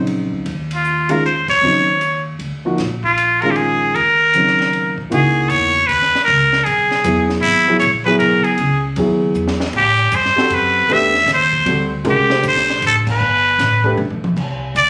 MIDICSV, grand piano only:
0, 0, Header, 1, 2, 480
1, 0, Start_track
1, 0, Tempo, 386349
1, 581, Time_signature, 3, 2, 24, 8
1, 18509, End_track
2, 0, Start_track
2, 0, Title_t, "Grand piano"
2, 0, Program_c, 0, 0
2, 0, Note_on_c, 0, 49, 53
2, 0, Note_on_c, 0, 54, 47
2, 0, Note_on_c, 0, 60, 44
2, 0, Note_on_c, 0, 63, 59
2, 541, Note_off_c, 0, 49, 0
2, 545, Note_off_c, 0, 54, 0
2, 548, Note_off_c, 0, 60, 0
2, 553, Note_off_c, 0, 63, 0
2, 1354, Note_on_c, 0, 51, 66
2, 1361, Note_on_c, 0, 56, 56
2, 1365, Note_on_c, 0, 61, 55
2, 1374, Note_on_c, 0, 65, 70
2, 1519, Note_off_c, 0, 51, 0
2, 1522, Note_off_c, 0, 56, 0
2, 1524, Note_off_c, 0, 61, 0
2, 1529, Note_off_c, 0, 65, 0
2, 2011, Note_on_c, 0, 49, 50
2, 2032, Note_on_c, 0, 54, 48
2, 2032, Note_on_c, 0, 60, 47
2, 2043, Note_on_c, 0, 63, 62
2, 2294, Note_off_c, 0, 49, 0
2, 2304, Note_off_c, 0, 54, 0
2, 2304, Note_off_c, 0, 60, 0
2, 2310, Note_off_c, 0, 63, 0
2, 3292, Note_on_c, 0, 53, 59
2, 3294, Note_on_c, 0, 58, 51
2, 3301, Note_on_c, 0, 63, 57
2, 3305, Note_on_c, 0, 66, 68
2, 3450, Note_off_c, 0, 53, 0
2, 3452, Note_off_c, 0, 58, 0
2, 3455, Note_off_c, 0, 63, 0
2, 3457, Note_off_c, 0, 66, 0
2, 4262, Note_on_c, 0, 56, 58
2, 4269, Note_on_c, 0, 51, 58
2, 4274, Note_on_c, 0, 61, 55
2, 4290, Note_on_c, 0, 65, 71
2, 4879, Note_off_c, 0, 56, 0
2, 4883, Note_off_c, 0, 51, 0
2, 4885, Note_off_c, 0, 61, 0
2, 4893, Note_off_c, 0, 65, 0
2, 5397, Note_on_c, 0, 49, 51
2, 5401, Note_on_c, 0, 54, 46
2, 5420, Note_on_c, 0, 60, 45
2, 5423, Note_on_c, 0, 63, 53
2, 6119, Note_off_c, 0, 49, 0
2, 6120, Note_off_c, 0, 54, 0
2, 6130, Note_off_c, 0, 60, 0
2, 6131, Note_off_c, 0, 63, 0
2, 6335, Note_on_c, 0, 52, 63
2, 6345, Note_on_c, 0, 58, 57
2, 6353, Note_on_c, 0, 63, 58
2, 6360, Note_on_c, 0, 66, 74
2, 7067, Note_off_c, 0, 52, 0
2, 7072, Note_off_c, 0, 58, 0
2, 7076, Note_off_c, 0, 63, 0
2, 7079, Note_off_c, 0, 66, 0
2, 8739, Note_on_c, 0, 54, 54
2, 8748, Note_on_c, 0, 59, 51
2, 8751, Note_on_c, 0, 64, 53
2, 8764, Note_on_c, 0, 68, 57
2, 9465, Note_off_c, 0, 54, 0
2, 9470, Note_off_c, 0, 59, 0
2, 9472, Note_off_c, 0, 64, 0
2, 9478, Note_off_c, 0, 68, 0
2, 9536, Note_on_c, 0, 59, 51
2, 9539, Note_on_c, 0, 54, 60
2, 9553, Note_on_c, 0, 64, 53
2, 9557, Note_on_c, 0, 68, 63
2, 9690, Note_off_c, 0, 59, 0
2, 9691, Note_off_c, 0, 54, 0
2, 9699, Note_off_c, 0, 64, 0
2, 9700, Note_off_c, 0, 68, 0
2, 10005, Note_on_c, 0, 59, 63
2, 10006, Note_on_c, 0, 54, 73
2, 10017, Note_on_c, 0, 64, 64
2, 10028, Note_on_c, 0, 68, 73
2, 10625, Note_off_c, 0, 59, 0
2, 10626, Note_off_c, 0, 54, 0
2, 10631, Note_off_c, 0, 64, 0
2, 10637, Note_off_c, 0, 68, 0
2, 11136, Note_on_c, 0, 54, 60
2, 11151, Note_on_c, 0, 59, 50
2, 11157, Note_on_c, 0, 64, 52
2, 11168, Note_on_c, 0, 68, 62
2, 11861, Note_off_c, 0, 54, 0
2, 11868, Note_off_c, 0, 59, 0
2, 11871, Note_off_c, 0, 64, 0
2, 11877, Note_off_c, 0, 68, 0
2, 12873, Note_on_c, 0, 67, 64
2, 12889, Note_on_c, 0, 66, 65
2, 12891, Note_on_c, 0, 60, 66
2, 12904, Note_on_c, 0, 69, 78
2, 13496, Note_off_c, 0, 67, 0
2, 13504, Note_off_c, 0, 66, 0
2, 13505, Note_off_c, 0, 60, 0
2, 13511, Note_off_c, 0, 69, 0
2, 13530, Note_on_c, 0, 57, 76
2, 13537, Note_on_c, 0, 62, 67
2, 13551, Note_on_c, 0, 67, 72
2, 13556, Note_on_c, 0, 71, 79
2, 13807, Note_off_c, 0, 57, 0
2, 13811, Note_off_c, 0, 62, 0
2, 13817, Note_off_c, 0, 67, 0
2, 13820, Note_off_c, 0, 71, 0
2, 14481, Note_on_c, 0, 55, 53
2, 14492, Note_on_c, 0, 60, 53
2, 14500, Note_on_c, 0, 66, 47
2, 14511, Note_on_c, 0, 69, 58
2, 14762, Note_off_c, 0, 55, 0
2, 14767, Note_off_c, 0, 60, 0
2, 14771, Note_off_c, 0, 66, 0
2, 14777, Note_off_c, 0, 69, 0
2, 14963, Note_on_c, 0, 56, 66
2, 14968, Note_on_c, 0, 61, 58
2, 14980, Note_on_c, 0, 66, 54
2, 14987, Note_on_c, 0, 70, 68
2, 15243, Note_off_c, 0, 56, 0
2, 15245, Note_off_c, 0, 61, 0
2, 15251, Note_off_c, 0, 66, 0
2, 15254, Note_off_c, 0, 70, 0
2, 15283, Note_on_c, 0, 57, 55
2, 15297, Note_on_c, 0, 62, 51
2, 15304, Note_on_c, 0, 67, 57
2, 15305, Note_on_c, 0, 72, 66
2, 16310, Note_off_c, 0, 57, 0
2, 16317, Note_off_c, 0, 62, 0
2, 16320, Note_off_c, 0, 67, 0
2, 16321, Note_off_c, 0, 72, 0
2, 17196, Note_on_c, 0, 57, 74
2, 17201, Note_on_c, 0, 62, 66
2, 17208, Note_on_c, 0, 67, 66
2, 17224, Note_on_c, 0, 71, 86
2, 17354, Note_off_c, 0, 57, 0
2, 17357, Note_off_c, 0, 62, 0
2, 17360, Note_off_c, 0, 67, 0
2, 17368, Note_off_c, 0, 71, 0
2, 18509, End_track
0, 0, End_of_file